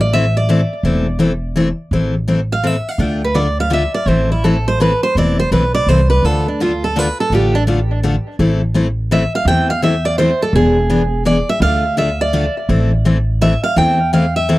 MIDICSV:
0, 0, Header, 1, 4, 480
1, 0, Start_track
1, 0, Key_signature, 0, "minor"
1, 0, Tempo, 359281
1, 1122, Time_signature, 3, 2, 24, 8
1, 19487, End_track
2, 0, Start_track
2, 0, Title_t, "Steel-string acoustic guitar"
2, 0, Program_c, 0, 25
2, 7, Note_on_c, 0, 74, 93
2, 169, Note_off_c, 0, 74, 0
2, 179, Note_on_c, 0, 76, 94
2, 463, Note_off_c, 0, 76, 0
2, 491, Note_on_c, 0, 74, 91
2, 1563, Note_off_c, 0, 74, 0
2, 3372, Note_on_c, 0, 77, 80
2, 3563, Note_off_c, 0, 77, 0
2, 3563, Note_on_c, 0, 76, 81
2, 3855, Note_off_c, 0, 76, 0
2, 3855, Note_on_c, 0, 77, 93
2, 4038, Note_off_c, 0, 77, 0
2, 4038, Note_on_c, 0, 79, 89
2, 4315, Note_off_c, 0, 79, 0
2, 4335, Note_on_c, 0, 71, 71
2, 4480, Note_on_c, 0, 74, 74
2, 4495, Note_off_c, 0, 71, 0
2, 4776, Note_off_c, 0, 74, 0
2, 4811, Note_on_c, 0, 77, 91
2, 4973, Note_off_c, 0, 77, 0
2, 4988, Note_on_c, 0, 76, 84
2, 5263, Note_off_c, 0, 76, 0
2, 5269, Note_on_c, 0, 74, 84
2, 5456, Note_off_c, 0, 74, 0
2, 5456, Note_on_c, 0, 72, 83
2, 5744, Note_off_c, 0, 72, 0
2, 5766, Note_on_c, 0, 64, 64
2, 5931, Note_off_c, 0, 64, 0
2, 5933, Note_on_c, 0, 69, 79
2, 6223, Note_off_c, 0, 69, 0
2, 6250, Note_on_c, 0, 72, 92
2, 6413, Note_off_c, 0, 72, 0
2, 6431, Note_on_c, 0, 71, 78
2, 6712, Note_off_c, 0, 71, 0
2, 6723, Note_on_c, 0, 72, 90
2, 6889, Note_off_c, 0, 72, 0
2, 6921, Note_on_c, 0, 74, 97
2, 7197, Note_off_c, 0, 74, 0
2, 7208, Note_on_c, 0, 72, 95
2, 7372, Note_off_c, 0, 72, 0
2, 7380, Note_on_c, 0, 71, 77
2, 7666, Note_off_c, 0, 71, 0
2, 7676, Note_on_c, 0, 74, 92
2, 7862, Note_off_c, 0, 74, 0
2, 7862, Note_on_c, 0, 72, 75
2, 8140, Note_off_c, 0, 72, 0
2, 8146, Note_on_c, 0, 71, 85
2, 8351, Note_off_c, 0, 71, 0
2, 8351, Note_on_c, 0, 69, 78
2, 8632, Note_off_c, 0, 69, 0
2, 8661, Note_on_c, 0, 62, 42
2, 8818, Note_off_c, 0, 62, 0
2, 8848, Note_on_c, 0, 65, 64
2, 9120, Note_off_c, 0, 65, 0
2, 9139, Note_on_c, 0, 69, 79
2, 9333, Note_off_c, 0, 69, 0
2, 9333, Note_on_c, 0, 71, 75
2, 9603, Note_off_c, 0, 71, 0
2, 9623, Note_on_c, 0, 69, 80
2, 9779, Note_off_c, 0, 69, 0
2, 9814, Note_on_c, 0, 67, 78
2, 10083, Note_off_c, 0, 67, 0
2, 10086, Note_on_c, 0, 62, 85
2, 10188, Note_off_c, 0, 62, 0
2, 12189, Note_on_c, 0, 76, 84
2, 12470, Note_off_c, 0, 76, 0
2, 12493, Note_on_c, 0, 77, 96
2, 12653, Note_off_c, 0, 77, 0
2, 12659, Note_on_c, 0, 79, 105
2, 12944, Note_off_c, 0, 79, 0
2, 12959, Note_on_c, 0, 77, 91
2, 13125, Note_off_c, 0, 77, 0
2, 13139, Note_on_c, 0, 76, 79
2, 13424, Note_off_c, 0, 76, 0
2, 13428, Note_on_c, 0, 74, 91
2, 13596, Note_off_c, 0, 74, 0
2, 13601, Note_on_c, 0, 72, 83
2, 13895, Note_off_c, 0, 72, 0
2, 13926, Note_on_c, 0, 69, 90
2, 14089, Note_off_c, 0, 69, 0
2, 14101, Note_on_c, 0, 68, 77
2, 14998, Note_off_c, 0, 68, 0
2, 15049, Note_on_c, 0, 74, 87
2, 15338, Note_off_c, 0, 74, 0
2, 15355, Note_on_c, 0, 76, 96
2, 15517, Note_off_c, 0, 76, 0
2, 15522, Note_on_c, 0, 77, 103
2, 15968, Note_off_c, 0, 77, 0
2, 16009, Note_on_c, 0, 76, 87
2, 16297, Note_off_c, 0, 76, 0
2, 16313, Note_on_c, 0, 74, 89
2, 16754, Note_off_c, 0, 74, 0
2, 17926, Note_on_c, 0, 76, 92
2, 18211, Note_off_c, 0, 76, 0
2, 18217, Note_on_c, 0, 77, 96
2, 18391, Note_off_c, 0, 77, 0
2, 18407, Note_on_c, 0, 79, 101
2, 18848, Note_off_c, 0, 79, 0
2, 18884, Note_on_c, 0, 77, 86
2, 19173, Note_off_c, 0, 77, 0
2, 19186, Note_on_c, 0, 76, 86
2, 19487, Note_off_c, 0, 76, 0
2, 19487, End_track
3, 0, Start_track
3, 0, Title_t, "Steel-string acoustic guitar"
3, 0, Program_c, 1, 25
3, 177, Note_on_c, 1, 52, 77
3, 187, Note_on_c, 1, 57, 81
3, 189, Note_on_c, 1, 60, 85
3, 195, Note_on_c, 1, 69, 86
3, 196, Note_on_c, 1, 64, 85
3, 321, Note_off_c, 1, 52, 0
3, 325, Note_off_c, 1, 57, 0
3, 327, Note_off_c, 1, 60, 0
3, 330, Note_off_c, 1, 64, 0
3, 330, Note_off_c, 1, 69, 0
3, 651, Note_on_c, 1, 52, 81
3, 658, Note_on_c, 1, 57, 90
3, 662, Note_on_c, 1, 60, 88
3, 662, Note_on_c, 1, 64, 98
3, 668, Note_on_c, 1, 69, 96
3, 798, Note_off_c, 1, 52, 0
3, 801, Note_off_c, 1, 57, 0
3, 803, Note_off_c, 1, 60, 0
3, 803, Note_off_c, 1, 64, 0
3, 807, Note_off_c, 1, 69, 0
3, 1132, Note_on_c, 1, 60, 69
3, 1133, Note_on_c, 1, 52, 69
3, 1134, Note_on_c, 1, 64, 72
3, 1135, Note_on_c, 1, 57, 69
3, 1138, Note_on_c, 1, 69, 84
3, 1413, Note_off_c, 1, 60, 0
3, 1414, Note_off_c, 1, 52, 0
3, 1414, Note_off_c, 1, 57, 0
3, 1414, Note_off_c, 1, 64, 0
3, 1416, Note_off_c, 1, 69, 0
3, 1587, Note_on_c, 1, 52, 79
3, 1597, Note_on_c, 1, 64, 88
3, 1598, Note_on_c, 1, 57, 86
3, 1601, Note_on_c, 1, 60, 90
3, 1606, Note_on_c, 1, 69, 93
3, 1747, Note_off_c, 1, 52, 0
3, 1751, Note_off_c, 1, 64, 0
3, 1752, Note_off_c, 1, 57, 0
3, 1753, Note_off_c, 1, 60, 0
3, 1756, Note_off_c, 1, 69, 0
3, 2079, Note_on_c, 1, 52, 84
3, 2095, Note_on_c, 1, 57, 88
3, 2096, Note_on_c, 1, 60, 92
3, 2096, Note_on_c, 1, 69, 92
3, 2100, Note_on_c, 1, 64, 88
3, 2233, Note_off_c, 1, 52, 0
3, 2241, Note_off_c, 1, 57, 0
3, 2241, Note_off_c, 1, 60, 0
3, 2241, Note_off_c, 1, 69, 0
3, 2243, Note_off_c, 1, 64, 0
3, 2575, Note_on_c, 1, 52, 62
3, 2577, Note_on_c, 1, 57, 68
3, 2578, Note_on_c, 1, 64, 68
3, 2580, Note_on_c, 1, 60, 71
3, 2584, Note_on_c, 1, 69, 71
3, 2855, Note_off_c, 1, 52, 0
3, 2856, Note_off_c, 1, 57, 0
3, 2857, Note_off_c, 1, 64, 0
3, 2858, Note_off_c, 1, 60, 0
3, 2860, Note_off_c, 1, 69, 0
3, 3041, Note_on_c, 1, 57, 72
3, 3045, Note_on_c, 1, 52, 73
3, 3048, Note_on_c, 1, 64, 77
3, 3049, Note_on_c, 1, 60, 84
3, 3055, Note_on_c, 1, 69, 74
3, 3194, Note_off_c, 1, 57, 0
3, 3196, Note_off_c, 1, 52, 0
3, 3198, Note_off_c, 1, 60, 0
3, 3198, Note_off_c, 1, 64, 0
3, 3201, Note_off_c, 1, 69, 0
3, 3520, Note_on_c, 1, 60, 81
3, 3521, Note_on_c, 1, 52, 77
3, 3524, Note_on_c, 1, 57, 83
3, 3525, Note_on_c, 1, 64, 84
3, 3532, Note_on_c, 1, 69, 84
3, 3674, Note_off_c, 1, 52, 0
3, 3674, Note_off_c, 1, 60, 0
3, 3676, Note_off_c, 1, 57, 0
3, 3677, Note_off_c, 1, 64, 0
3, 3680, Note_off_c, 1, 69, 0
3, 3994, Note_on_c, 1, 50, 64
3, 4000, Note_on_c, 1, 57, 65
3, 4003, Note_on_c, 1, 62, 72
3, 4007, Note_on_c, 1, 69, 79
3, 4009, Note_on_c, 1, 65, 69
3, 4285, Note_off_c, 1, 50, 0
3, 4289, Note_off_c, 1, 57, 0
3, 4290, Note_off_c, 1, 62, 0
3, 4292, Note_off_c, 1, 69, 0
3, 4293, Note_off_c, 1, 65, 0
3, 4467, Note_on_c, 1, 50, 80
3, 4471, Note_on_c, 1, 57, 75
3, 4473, Note_on_c, 1, 62, 76
3, 4475, Note_on_c, 1, 65, 84
3, 4479, Note_on_c, 1, 69, 84
3, 4628, Note_off_c, 1, 50, 0
3, 4630, Note_off_c, 1, 57, 0
3, 4630, Note_off_c, 1, 62, 0
3, 4632, Note_off_c, 1, 65, 0
3, 4634, Note_off_c, 1, 69, 0
3, 4943, Note_on_c, 1, 50, 81
3, 4946, Note_on_c, 1, 62, 81
3, 4948, Note_on_c, 1, 57, 91
3, 4952, Note_on_c, 1, 69, 92
3, 4955, Note_on_c, 1, 65, 88
3, 5106, Note_off_c, 1, 50, 0
3, 5107, Note_off_c, 1, 62, 0
3, 5108, Note_off_c, 1, 57, 0
3, 5110, Note_off_c, 1, 69, 0
3, 5112, Note_off_c, 1, 65, 0
3, 5442, Note_on_c, 1, 57, 65
3, 5444, Note_on_c, 1, 52, 68
3, 5449, Note_on_c, 1, 60, 73
3, 5454, Note_on_c, 1, 64, 72
3, 5459, Note_on_c, 1, 69, 76
3, 5730, Note_off_c, 1, 57, 0
3, 5731, Note_off_c, 1, 52, 0
3, 5733, Note_off_c, 1, 60, 0
3, 5736, Note_off_c, 1, 64, 0
3, 5739, Note_off_c, 1, 69, 0
3, 5933, Note_on_c, 1, 52, 81
3, 5937, Note_on_c, 1, 57, 76
3, 5943, Note_on_c, 1, 64, 86
3, 5948, Note_on_c, 1, 60, 86
3, 5953, Note_on_c, 1, 69, 86
3, 6081, Note_off_c, 1, 52, 0
3, 6083, Note_off_c, 1, 57, 0
3, 6086, Note_off_c, 1, 64, 0
3, 6089, Note_off_c, 1, 60, 0
3, 6091, Note_off_c, 1, 69, 0
3, 6413, Note_on_c, 1, 52, 90
3, 6420, Note_on_c, 1, 60, 89
3, 6423, Note_on_c, 1, 57, 83
3, 6430, Note_on_c, 1, 64, 96
3, 6432, Note_on_c, 1, 69, 97
3, 6562, Note_off_c, 1, 52, 0
3, 6565, Note_off_c, 1, 60, 0
3, 6566, Note_off_c, 1, 57, 0
3, 6570, Note_off_c, 1, 64, 0
3, 6571, Note_off_c, 1, 69, 0
3, 6907, Note_on_c, 1, 52, 66
3, 6908, Note_on_c, 1, 57, 62
3, 6914, Note_on_c, 1, 60, 69
3, 6914, Note_on_c, 1, 64, 73
3, 6924, Note_on_c, 1, 69, 67
3, 7183, Note_off_c, 1, 52, 0
3, 7183, Note_off_c, 1, 57, 0
3, 7186, Note_off_c, 1, 60, 0
3, 7186, Note_off_c, 1, 64, 0
3, 7191, Note_off_c, 1, 69, 0
3, 7370, Note_on_c, 1, 52, 77
3, 7372, Note_on_c, 1, 57, 70
3, 7374, Note_on_c, 1, 60, 81
3, 7376, Note_on_c, 1, 64, 79
3, 7385, Note_on_c, 1, 69, 85
3, 7520, Note_off_c, 1, 52, 0
3, 7520, Note_off_c, 1, 57, 0
3, 7522, Note_off_c, 1, 60, 0
3, 7523, Note_off_c, 1, 64, 0
3, 7527, Note_off_c, 1, 69, 0
3, 7864, Note_on_c, 1, 52, 82
3, 7869, Note_on_c, 1, 57, 81
3, 7871, Note_on_c, 1, 64, 86
3, 7872, Note_on_c, 1, 60, 89
3, 7882, Note_on_c, 1, 69, 92
3, 8007, Note_off_c, 1, 52, 0
3, 8009, Note_off_c, 1, 57, 0
3, 8010, Note_off_c, 1, 64, 0
3, 8011, Note_off_c, 1, 60, 0
3, 8016, Note_off_c, 1, 69, 0
3, 8344, Note_on_c, 1, 50, 69
3, 8345, Note_on_c, 1, 57, 60
3, 8350, Note_on_c, 1, 62, 64
3, 8353, Note_on_c, 1, 65, 76
3, 8354, Note_on_c, 1, 69, 73
3, 8621, Note_off_c, 1, 50, 0
3, 8621, Note_off_c, 1, 57, 0
3, 8624, Note_off_c, 1, 62, 0
3, 8626, Note_off_c, 1, 65, 0
3, 8626, Note_off_c, 1, 69, 0
3, 8821, Note_on_c, 1, 50, 79
3, 8826, Note_on_c, 1, 57, 83
3, 8831, Note_on_c, 1, 65, 81
3, 8831, Note_on_c, 1, 69, 84
3, 8835, Note_on_c, 1, 62, 75
3, 8965, Note_off_c, 1, 50, 0
3, 8968, Note_off_c, 1, 57, 0
3, 8970, Note_off_c, 1, 65, 0
3, 8970, Note_off_c, 1, 69, 0
3, 8972, Note_off_c, 1, 62, 0
3, 9296, Note_on_c, 1, 50, 75
3, 9297, Note_on_c, 1, 57, 82
3, 9302, Note_on_c, 1, 65, 92
3, 9306, Note_on_c, 1, 62, 91
3, 9309, Note_on_c, 1, 69, 85
3, 9442, Note_off_c, 1, 50, 0
3, 9443, Note_off_c, 1, 57, 0
3, 9445, Note_off_c, 1, 65, 0
3, 9448, Note_off_c, 1, 62, 0
3, 9449, Note_off_c, 1, 69, 0
3, 9782, Note_on_c, 1, 50, 69
3, 9786, Note_on_c, 1, 57, 69
3, 9789, Note_on_c, 1, 62, 73
3, 9790, Note_on_c, 1, 69, 72
3, 9792, Note_on_c, 1, 65, 70
3, 10060, Note_off_c, 1, 50, 0
3, 10062, Note_off_c, 1, 57, 0
3, 10063, Note_off_c, 1, 62, 0
3, 10064, Note_off_c, 1, 69, 0
3, 10065, Note_off_c, 1, 65, 0
3, 10246, Note_on_c, 1, 50, 77
3, 10248, Note_on_c, 1, 57, 82
3, 10259, Note_on_c, 1, 62, 86
3, 10261, Note_on_c, 1, 69, 89
3, 10262, Note_on_c, 1, 65, 78
3, 10397, Note_off_c, 1, 50, 0
3, 10398, Note_off_c, 1, 57, 0
3, 10403, Note_off_c, 1, 62, 0
3, 10405, Note_off_c, 1, 65, 0
3, 10405, Note_off_c, 1, 69, 0
3, 10733, Note_on_c, 1, 57, 82
3, 10736, Note_on_c, 1, 50, 92
3, 10745, Note_on_c, 1, 62, 90
3, 10746, Note_on_c, 1, 69, 88
3, 10748, Note_on_c, 1, 65, 90
3, 10881, Note_off_c, 1, 57, 0
3, 10882, Note_off_c, 1, 50, 0
3, 10886, Note_off_c, 1, 62, 0
3, 10887, Note_off_c, 1, 69, 0
3, 10888, Note_off_c, 1, 65, 0
3, 11212, Note_on_c, 1, 57, 76
3, 11213, Note_on_c, 1, 52, 69
3, 11219, Note_on_c, 1, 60, 75
3, 11223, Note_on_c, 1, 64, 78
3, 11223, Note_on_c, 1, 69, 74
3, 11494, Note_off_c, 1, 57, 0
3, 11495, Note_off_c, 1, 52, 0
3, 11497, Note_off_c, 1, 60, 0
3, 11500, Note_off_c, 1, 64, 0
3, 11500, Note_off_c, 1, 69, 0
3, 11682, Note_on_c, 1, 52, 75
3, 11692, Note_on_c, 1, 57, 91
3, 11692, Note_on_c, 1, 60, 81
3, 11692, Note_on_c, 1, 69, 90
3, 11697, Note_on_c, 1, 64, 86
3, 11834, Note_off_c, 1, 52, 0
3, 11839, Note_off_c, 1, 57, 0
3, 11839, Note_off_c, 1, 60, 0
3, 11840, Note_off_c, 1, 69, 0
3, 11842, Note_off_c, 1, 64, 0
3, 12173, Note_on_c, 1, 52, 89
3, 12180, Note_on_c, 1, 60, 95
3, 12182, Note_on_c, 1, 69, 97
3, 12183, Note_on_c, 1, 57, 93
3, 12184, Note_on_c, 1, 64, 97
3, 12320, Note_off_c, 1, 52, 0
3, 12323, Note_off_c, 1, 60, 0
3, 12324, Note_off_c, 1, 69, 0
3, 12325, Note_off_c, 1, 57, 0
3, 12325, Note_off_c, 1, 64, 0
3, 12672, Note_on_c, 1, 57, 69
3, 12673, Note_on_c, 1, 52, 72
3, 12676, Note_on_c, 1, 60, 70
3, 12677, Note_on_c, 1, 64, 68
3, 12679, Note_on_c, 1, 69, 73
3, 12943, Note_off_c, 1, 57, 0
3, 12944, Note_off_c, 1, 52, 0
3, 12945, Note_off_c, 1, 60, 0
3, 12946, Note_off_c, 1, 64, 0
3, 12947, Note_off_c, 1, 69, 0
3, 13124, Note_on_c, 1, 52, 76
3, 13124, Note_on_c, 1, 60, 77
3, 13126, Note_on_c, 1, 57, 79
3, 13131, Note_on_c, 1, 64, 87
3, 13136, Note_on_c, 1, 69, 84
3, 13275, Note_off_c, 1, 52, 0
3, 13275, Note_off_c, 1, 60, 0
3, 13276, Note_off_c, 1, 57, 0
3, 13279, Note_off_c, 1, 64, 0
3, 13281, Note_off_c, 1, 69, 0
3, 13608, Note_on_c, 1, 57, 93
3, 13610, Note_on_c, 1, 52, 89
3, 13615, Note_on_c, 1, 64, 88
3, 13618, Note_on_c, 1, 60, 83
3, 13618, Note_on_c, 1, 69, 102
3, 13757, Note_off_c, 1, 52, 0
3, 13757, Note_off_c, 1, 57, 0
3, 13760, Note_off_c, 1, 64, 0
3, 13761, Note_off_c, 1, 60, 0
3, 13762, Note_off_c, 1, 69, 0
3, 14099, Note_on_c, 1, 52, 67
3, 14106, Note_on_c, 1, 59, 65
3, 14110, Note_on_c, 1, 62, 68
3, 14113, Note_on_c, 1, 68, 68
3, 14376, Note_off_c, 1, 52, 0
3, 14380, Note_off_c, 1, 59, 0
3, 14382, Note_off_c, 1, 62, 0
3, 14383, Note_off_c, 1, 68, 0
3, 14557, Note_on_c, 1, 59, 85
3, 14558, Note_on_c, 1, 52, 81
3, 14565, Note_on_c, 1, 62, 87
3, 14566, Note_on_c, 1, 68, 97
3, 14711, Note_off_c, 1, 52, 0
3, 14711, Note_off_c, 1, 59, 0
3, 14715, Note_off_c, 1, 62, 0
3, 14715, Note_off_c, 1, 68, 0
3, 15034, Note_on_c, 1, 52, 84
3, 15040, Note_on_c, 1, 59, 88
3, 15040, Note_on_c, 1, 62, 97
3, 15045, Note_on_c, 1, 68, 100
3, 15189, Note_off_c, 1, 52, 0
3, 15192, Note_off_c, 1, 59, 0
3, 15192, Note_off_c, 1, 62, 0
3, 15195, Note_off_c, 1, 68, 0
3, 15518, Note_on_c, 1, 50, 68
3, 15521, Note_on_c, 1, 57, 70
3, 15527, Note_on_c, 1, 62, 75
3, 15527, Note_on_c, 1, 69, 80
3, 15528, Note_on_c, 1, 65, 76
3, 15805, Note_off_c, 1, 50, 0
3, 15807, Note_off_c, 1, 57, 0
3, 15809, Note_off_c, 1, 69, 0
3, 15810, Note_off_c, 1, 62, 0
3, 15810, Note_off_c, 1, 65, 0
3, 15991, Note_on_c, 1, 50, 81
3, 15995, Note_on_c, 1, 62, 86
3, 15996, Note_on_c, 1, 57, 76
3, 16001, Note_on_c, 1, 65, 85
3, 16005, Note_on_c, 1, 69, 87
3, 16147, Note_off_c, 1, 50, 0
3, 16149, Note_off_c, 1, 57, 0
3, 16149, Note_off_c, 1, 62, 0
3, 16152, Note_off_c, 1, 65, 0
3, 16154, Note_off_c, 1, 69, 0
3, 16474, Note_on_c, 1, 50, 83
3, 16478, Note_on_c, 1, 57, 78
3, 16478, Note_on_c, 1, 62, 92
3, 16485, Note_on_c, 1, 65, 94
3, 16486, Note_on_c, 1, 69, 91
3, 16628, Note_off_c, 1, 50, 0
3, 16630, Note_off_c, 1, 57, 0
3, 16630, Note_off_c, 1, 62, 0
3, 16634, Note_off_c, 1, 65, 0
3, 16634, Note_off_c, 1, 69, 0
3, 16957, Note_on_c, 1, 52, 69
3, 16960, Note_on_c, 1, 57, 74
3, 16960, Note_on_c, 1, 60, 67
3, 16962, Note_on_c, 1, 64, 76
3, 16966, Note_on_c, 1, 69, 75
3, 17243, Note_off_c, 1, 52, 0
3, 17245, Note_off_c, 1, 57, 0
3, 17245, Note_off_c, 1, 60, 0
3, 17246, Note_off_c, 1, 64, 0
3, 17248, Note_off_c, 1, 69, 0
3, 17437, Note_on_c, 1, 52, 79
3, 17441, Note_on_c, 1, 57, 82
3, 17446, Note_on_c, 1, 60, 81
3, 17449, Note_on_c, 1, 64, 83
3, 17454, Note_on_c, 1, 69, 86
3, 17589, Note_off_c, 1, 52, 0
3, 17591, Note_off_c, 1, 57, 0
3, 17593, Note_off_c, 1, 60, 0
3, 17595, Note_off_c, 1, 64, 0
3, 17598, Note_off_c, 1, 69, 0
3, 17921, Note_on_c, 1, 57, 95
3, 17925, Note_on_c, 1, 52, 81
3, 17928, Note_on_c, 1, 60, 84
3, 17934, Note_on_c, 1, 64, 94
3, 17936, Note_on_c, 1, 69, 99
3, 18071, Note_off_c, 1, 57, 0
3, 18073, Note_off_c, 1, 52, 0
3, 18074, Note_off_c, 1, 60, 0
3, 18077, Note_off_c, 1, 64, 0
3, 18078, Note_off_c, 1, 69, 0
3, 18386, Note_on_c, 1, 52, 71
3, 18388, Note_on_c, 1, 57, 70
3, 18393, Note_on_c, 1, 60, 74
3, 18396, Note_on_c, 1, 64, 74
3, 18397, Note_on_c, 1, 69, 73
3, 18677, Note_off_c, 1, 52, 0
3, 18678, Note_off_c, 1, 57, 0
3, 18681, Note_off_c, 1, 60, 0
3, 18682, Note_off_c, 1, 64, 0
3, 18682, Note_off_c, 1, 69, 0
3, 18876, Note_on_c, 1, 52, 81
3, 18881, Note_on_c, 1, 60, 82
3, 18885, Note_on_c, 1, 57, 88
3, 18886, Note_on_c, 1, 64, 89
3, 18887, Note_on_c, 1, 69, 93
3, 19028, Note_off_c, 1, 52, 0
3, 19030, Note_off_c, 1, 60, 0
3, 19032, Note_off_c, 1, 57, 0
3, 19032, Note_off_c, 1, 64, 0
3, 19033, Note_off_c, 1, 69, 0
3, 19354, Note_on_c, 1, 57, 90
3, 19356, Note_on_c, 1, 52, 88
3, 19357, Note_on_c, 1, 60, 90
3, 19365, Note_on_c, 1, 69, 103
3, 19367, Note_on_c, 1, 64, 95
3, 19487, Note_off_c, 1, 52, 0
3, 19487, Note_off_c, 1, 57, 0
3, 19487, Note_off_c, 1, 60, 0
3, 19487, Note_off_c, 1, 64, 0
3, 19487, Note_off_c, 1, 69, 0
3, 19487, End_track
4, 0, Start_track
4, 0, Title_t, "Upright bass"
4, 0, Program_c, 2, 32
4, 0, Note_on_c, 2, 33, 82
4, 823, Note_off_c, 2, 33, 0
4, 1113, Note_on_c, 2, 28, 83
4, 2270, Note_off_c, 2, 28, 0
4, 2552, Note_on_c, 2, 33, 80
4, 3710, Note_off_c, 2, 33, 0
4, 3985, Note_on_c, 2, 38, 82
4, 5146, Note_off_c, 2, 38, 0
4, 5421, Note_on_c, 2, 33, 86
4, 6584, Note_off_c, 2, 33, 0
4, 6882, Note_on_c, 2, 28, 80
4, 7268, Note_off_c, 2, 28, 0
4, 7365, Note_on_c, 2, 35, 74
4, 7774, Note_off_c, 2, 35, 0
4, 7835, Note_on_c, 2, 36, 82
4, 8248, Note_off_c, 2, 36, 0
4, 8316, Note_on_c, 2, 38, 86
4, 9472, Note_off_c, 2, 38, 0
4, 9753, Note_on_c, 2, 33, 78
4, 10909, Note_off_c, 2, 33, 0
4, 11210, Note_on_c, 2, 33, 91
4, 12359, Note_off_c, 2, 33, 0
4, 12627, Note_on_c, 2, 40, 86
4, 13785, Note_off_c, 2, 40, 0
4, 14068, Note_on_c, 2, 28, 94
4, 15225, Note_off_c, 2, 28, 0
4, 15500, Note_on_c, 2, 38, 89
4, 16659, Note_off_c, 2, 38, 0
4, 16951, Note_on_c, 2, 33, 95
4, 18105, Note_off_c, 2, 33, 0
4, 18389, Note_on_c, 2, 40, 80
4, 19487, Note_off_c, 2, 40, 0
4, 19487, End_track
0, 0, End_of_file